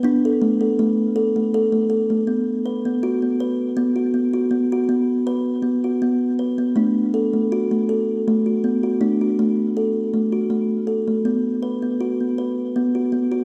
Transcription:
<<
  \new Staff \with { instrumentName = "Kalimba" } { \time 3/4 \key b \minor \tempo 4 = 80 d'16 a'16 a16 a'16 a8 a'16 a16 a'16 a16 a'16 a16 | r8 b'16 b16 fis'16 b16 b'8 b16 fis'16 b16 fis'16 | r16 fis'16 b8 b'8 b16 fis'16 b8 b'16 b16 | a8 a'16 a16 fis'16 a16 a'8 a16 fis'16 b16 fis'16 |
a16 fis'16 a8 a'8 a16 fis'16 a8 a'16 a16 | r8 b'16 b16 fis'16 b16 b'8 b16 fis'16 b16 fis'16 | }
  \new Staff \with { instrumentName = "Kalimba" } { \time 3/4 \key b \minor b2. | b2. | b2. | d'2. |
d'2. | b2. | }
>>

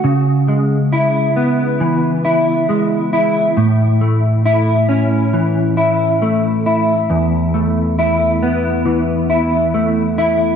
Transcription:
\new Staff \with { instrumentName = "Clean electric guitar" } { \time 4/4 \key cis \phrygian \tempo 4 = 68 cis8 gis8 e'8 b8 e8 e'8 gis8 e'8 | a,8 a8 e'8 cis'8 e8 e'8 a8 e'8 | e,8 a8 e'8 b8 e8 e'8 a8 e'8 | }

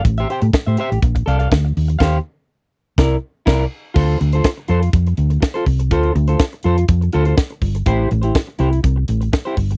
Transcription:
<<
  \new Staff \with { instrumentName = "Clean electric guitar" } { \time 4/4 \key d \minor \tempo 4 = 123 r16 <g' c'' e''>16 <g' c'' g''>16 r8 <g' c'' e''>16 <g' c'' e''>8 r8 <a' d'' f''>16 <a' d'' f''>16 r4 | <g' c'' f''>8 r4. <e' bes' d''>8 r8 <e' bes' d''>8 r8 | <f' a' c''>8 r16 <f' a' c''>16 r8 <f' a' c''>8 r4 r16 <f' a' c''>8 r16 | <f' a' c''>8 r16 <f' a' c''>16 r8 <f' a' c''>8 r8 <f' a' c''>16 <f' a' c''>16 r4 |
<e' g' c''>8 r16 <e' g' c''>16 r8 <e' g' c''>8 r4 r16 <e' g' c''>8 r16 | }
  \new Staff \with { instrumentName = "Fingered electric bass" } { \clef bass \time 4/4 \key d \minor a,,8 r16 a,16 r16 a,16 r16 a,,16 bes,,8 c,8 d,8 ees,8 | ees,8 r4. c,8 r8 c,8 r8 | d,8 d,8 r8 f,8 f,8 d,8 r8 c,8 | d,8 d,8 r8 f,8 f,8 d,8 r8 g,,8 |
a,,8 a,,8 r8 c,8 c,8 a,,8 r8 g,,8 | }
  \new DrumStaff \with { instrumentName = "Drums" } \drummode { \time 4/4 <hh bd>16 hh16 hh16 hh16 <bd sn>8 hh16 hh16 <hh bd>16 <hh bd>16 hh16 hh16 <bd sn>8 hho16 hh16 | <cymc bd sn>4 r4 <bd sn>4 <cymc bd sn>4 | <cymc bd>16 hh16 hh16 hh16 <bd sn>8 hh16 hh16 <hh bd>16 hh16 hh16 hh16 <bd sn>16 hh16 <hho bd>16 hh16 | <hh bd>16 hh16 hh16 hh16 <bd sn>16 hh16 hh16 hh16 <hh bd>16 hh16 hh16 hh16 <bd sn>16 hh16 <hho bd>16 hh16 |
<hh bd>8 hh16 hh16 <bd sn>8 hh16 hh16 <hh bd>8 hh16 hh16 <bd sn>16 hh16 <hho bd>16 hh16 | }
>>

